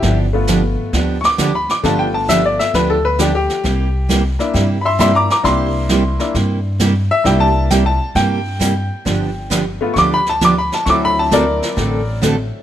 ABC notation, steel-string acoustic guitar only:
X:1
M:4/4
L:1/8
Q:"Swing" 1/4=133
K:Gmix
V:1 name="Steel-string acoustic guitar"
[D,F,B,DG] z [D,F,B,DG] z [D,F,B,DG] z [D,F,B,DG] z | [D,F,B,DG] z [D,F,B,DG] z [D,F,B,DG] z [D,F,B,DG] z | [C,G,_B,EG] z [C,G,B,EG] z [C,G,B,EG] z [C,G,B,EG] z | [C,G,_B,EG] z [C,G,B,EG] z [C,G,B,EG] z [C,G,B,EG] z |
[C,G,_B,EG] z [C,G,B,EG] z [C,G,B,EG] z [C,G,B,EG] z | [D,F,B,DG] z [D,F,B,DG] z [D,F,B,DG] z [D,F,B,DG] z | [D,A,C^FA] z [D,A,CFA] z [D,A,CFA] z [D,A,CFA] z |]